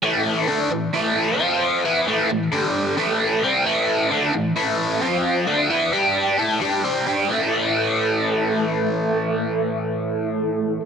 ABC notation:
X:1
M:4/4
L:1/8
Q:1/4=132
K:Am
V:1 name="Overdriven electric guitar" clef=bass
[A,,E,A,]2 [D,A,D] [A,,E,] [A,,E,A,]2 [F,CF]2 | [E,B,E] [A,,E,A,] [A,,E,] [G,,D,G,]2 [A,,E,A,]2 [C,G,C] | [A,,E,A,]2 [D,A,D] [A,,E,] [A,,E,A,]2 [F,CF]2 | [D,A,D] [E,B,E] [G,DG]2 [A,EA] [G,DG] [C,G,C] [G,DG] |
[A,,E,A,]8- | [A,,E,A,]8 |]